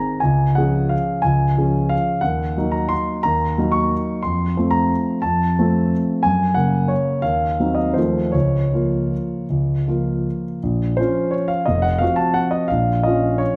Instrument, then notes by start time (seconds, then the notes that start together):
grand piano
Already playing: D#3 C4 G#4 A#5
0.20 C#2 G#5
0.55 F3 C#4 G#4 F#5
0.89 F5
1.22 C#2 G#5
1.57 F3 C#4 G#4
1.89 F5
2.21 D#2 F#5
2.57 F#3 A#3 D#4
2.72 A#5
2.89 C6
3.23 D#2 A#5
3.58 F#3 A#3 D#4
3.72 C#6
4.23 F2 C6
4.57 F3 A3 C4
4.71 A#5
5.22 F2 A5
5.59 F3 A3 C4
6.23 F#2 G#5
6.54 C#3 A#3 F#5
6.88 C#5
7.22 D#2 F5
7.60 F#3 C4 D#4
7.75 D#5
7.94 D#2 F3 A3 F4 C5
8.32 C#2 C#5
8.73 F3 A#3 F4
9.50 C#2
9.88 F3 A#3 F4
10.63 A#1
10.97 F3 C#4 F4 C5
11.31 C#5
11.48 F5
11.66 F1 D#5
11.82 F#5
11.98 F3 C4 F#4 F5
12.16 A5
12.34 F#5
12.51 D#5
12.68 A#1 F5
13.03 F3 C#4 F4 D#5
13.38 C#5